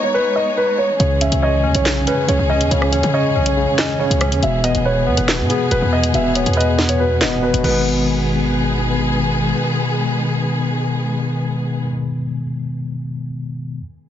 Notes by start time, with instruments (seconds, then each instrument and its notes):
Already playing: string section G#3 B3 D#4 C#5
0.04 grand piano C#5
0.14 grand piano B4
0.36 grand piano D#5
0.57 grand piano B4
0.78 grand piano C#5
1.00 808-style bass C#2, tine electric piano C#3, string section E3 G#3 C#4 G#4, grand piano C#5, closed hi-hat
1.21 tine electric piano C#4, grand piano E5, closed hi-hat
1.32 808-style bass C#2, closed hi-hat
1.42 tine electric piano C#5, grand piano D#5
1.64 808-style bass D#2, tine electric piano C#4
1.75 808-style bass B1, grand piano C#5, closed hi-hat
1.85 tine electric piano C#3, snare, clap
2.07 tine electric piano C#4, grand piano B4, closed hi-hat
2.28 808-style bass C#2, tine electric piano C#3, grand piano C#5, closed hi-hat
2.39 808-style bass C#2
2.50 tine electric piano C#4, grand piano D#5
2.61 808-style bass E2, closed hi-hat
2.71 808-style bass C#2, tine electric piano C#3, grand piano C#5, closed hi-hat
2.82 cross-stick
2.92 808-style bass D#2, tine electric piano C#4, grand piano C#5, closed hi-hat
3.03 808-style bass C#3, closed hi-hat
3.14 tine electric piano C#5, grand piano D#5
3.36 808-style bass B1, tine electric piano C#4
3.46 grand piano C#5, closed hi-hat
3.57 tine electric piano C#3
3.78 tine electric piano C#4, grand piano D#5, snare, clap, closed hi-hat
3.99 tine electric piano C#3, grand piano C#5
4.11 808-style bass C#2, closed hi-hat
4.21 tine electric piano C#4, cross-stick, closed hi-hat
4.32 808-style bass E2, closed hi-hat
4.42 808-style bass E1, tine electric piano B2, string section G#3 B3 G#4, grand piano E5, closed hi-hat
4.64 tine electric piano B3, grand piano D#5, closed hi-hat
4.75 808-style bass E1, closed hi-hat
4.85 tine electric piano B4, grand piano C#5
5.07 808-style bass E2, tine electric piano B3
5.17 808-style bass E1, grand piano B4, closed hi-hat
5.28 tine electric piano B2, snare, clap
5.39 808-style bass G#2
5.50 tine electric piano B3, grand piano G#4, closed hi-hat
5.71 808-style bass E1, tine electric piano B2, grand piano B4, closed hi-hat
5.82 808-style bass E2
5.92 tine electric piano B3, grand piano D#5
6.04 closed hi-hat
6.14 808-style bass E1, tine electric piano B2, grand piano E5, closed hi-hat
6.35 tine electric piano B3, grand piano C#5, closed hi-hat
6.46 808-style bass E2, closed hi-hat
6.53 tine electric piano B4, grand piano D#5, closed hi-hat
6.61 closed hi-hat
6.78 tine electric piano B3, snare
6.89 grand piano C#5, closed hi-hat
7.00 tine electric piano B2, grand piano B4
7.21 808-style bass D#1, tine electric piano B3, grand piano D#5, snare, clap, closed hi-hat
7.43 tine electric piano B2, grand piano B4
7.53 808-style bass E1, closed hi-hat
7.58 tine electric piano B2
7.62 808-style bass G#1, tine electric piano D#3 G#3, string section D#3 G#3 B3 G#4, grand piano B4, crash
7.70 tine electric piano B3